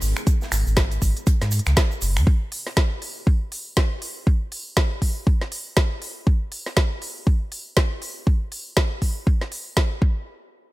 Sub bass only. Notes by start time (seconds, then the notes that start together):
0.02 G#1
0.52 G#1
0.67 G#1
1.02 G#1
1.42 G#2
1.67 C#2
2.02 F#1
2.17 F#2